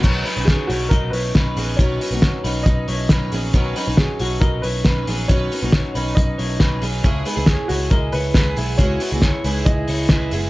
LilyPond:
<<
  \new Staff \with { instrumentName = "Upright piano" } { \time 4/4 \key b \major \tempo 4 = 137 r4 gis'8 fis'8 ais'8 b'4. | cis''2 dis''4. r8 | r4 gis'8 fis'8 ais'8 b'4. | cis''2 dis''4. r8 |
r4 gis'8 fis'8 ais'8 b'4. | cis''2 dis''4. r8 | }
  \new Staff \with { instrumentName = "Clean electric guitar" } { \time 4/4 \key b \major <fis' cis''>8 <dis' b'>8 <fis' cis''>8 <e' cis''>8 <fis' dis''>8 <e' cis''>8 <dis' b'>8 <b gis'>8 | <b fis'>8. <ais fis'>16 <fis' cis''>8 <dis' b'>4 <e' cis''>8 <dis' b'>8 <b gis'>8 | <fis' cis''>8 <dis' b'>8 <fis' cis''>8 <e' cis''>8 <fis' dis''>8 <e' cis''>8 <dis' b'>8 <b gis'>8 | <b fis'>8. <ais fis'>16 <fis' cis''>8 <dis' b'>4 <e' cis''>8 <dis' b'>8 <b gis'>8 |
<e' cis''>8 <dis' b'>8 <e' cis''>8 <e' cis''>8 <gis' dis''>8 <e' cis''>8 <e' b'>8 <b gis'>8 | <b fis'>8. <ais fis'>16 <e' cis''>8 <dis' b'>4 <e' cis''>8 <e' b'>8 <b gis'>8 | }
  \new Staff \with { instrumentName = "Twelve-string acoustic guitar" } { \time 4/4 \key b \major <b, dis fis cis' dis' b'>8 <fis cis' dis' b'>16 <fis cis' dis' b'>8. <fis cis' dis' b'>4. <fis cis' dis' b'>8 <fis cis' dis' b'>8 | <b, dis fis cis' dis' b'>8 <fis cis' dis' b'>16 <fis cis' dis' b'>8. <fis cis' dis' b'>4. <fis cis' dis' b'>8 <fis cis' dis' b'>8 | <b, dis fis cis' dis' b'>8 <fis cis' dis' b'>16 <fis cis' dis' b'>8. <fis cis' dis' b'>4. <fis cis' dis' b'>8 <fis cis' dis' b'>8 | <b, dis fis cis' dis' b'>8 <fis cis' dis' b'>16 <fis cis' dis' b'>8. <fis cis' dis' b'>4. <fis cis' dis' b'>8 <fis cis' dis' b'>8 |
<cis gis b e' gis'>8 <gis b e' gis'>16 <b e' gis'>8. <gis b e' gis'>4. <gis b e' gis'>8 <gis b e' gis'>8 | <cis gis b e' gis'>8 <gis b e' gis'>16 <b e' gis'>8. <gis b e' gis'>4. <gis b e' gis'>8 <gis b e' gis'>8 | }
  \new Staff \with { instrumentName = "Picked electric bass" } { \clef bass \time 4/4 \key b \major b,,8 r16 b,,8 r16 b,,8 b,,8 b,,8 b,,8 ais,,8 | b,,8 r16 b,,8 r16 b,,8 b,,8 b,,8 b,,8 ais,,8 | b,,8 r16 b,,8 r16 b,,8 b,,8 b,,8 b,,8 ais,,8 | b,,8 r16 b,,8 r16 b,,8 b,,8 b,,8 b,,8 b,,8 |
cis,8 r16 cis,8 r16 cis,8 cis,8 cis,8 cis,8 b,,8 | cis,8 r16 cis,8 r16 cis,8 cis,8 cis,8 cis,8 fis,,8 | }
  \new DrumStaff \with { instrumentName = "Drums" } \drummode { \time 4/4 <cymc bd>8 hho8 <hh bd sn>8 hho8 <hh bd>8 hho8 <hh bd sn>8 hho8 | <hh bd>8 hho8 <hh bd sn>8 hho8 <hh bd>8 hho8 <hh bd sn>8 hho8 | <hh bd>8 hho8 <hh bd sn>8 hho8 <hh bd>8 hho8 <hh bd sn>8 hho8 | <hh bd>8 hho8 <hh bd sn>8 hho8 <hh bd>8 hho8 <hh bd sn>8 hho8 |
<hh bd>8 hho8 <hh bd sn>8 hho8 <hh bd>8 hho8 <hh bd sn>8 hho8 | <hh bd>8 hho8 <hh bd sn>8 hho8 <hh bd>8 hho8 <hh bd sn>8 hho8 | }
>>